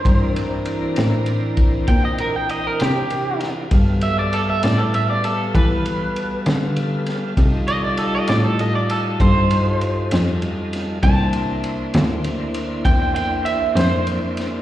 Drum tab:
RD |xxxxxxxxxxxx|xxxxxxxxxxxx|xxxxxxxxxxxx|xxxxxxxxxxxx|
SD |---o-----o-o|---o-----o-o|---o-----o-o|---o-----o-o|
BD |o----oo-----|o-----o-----|o-----o-----|o-----o-----|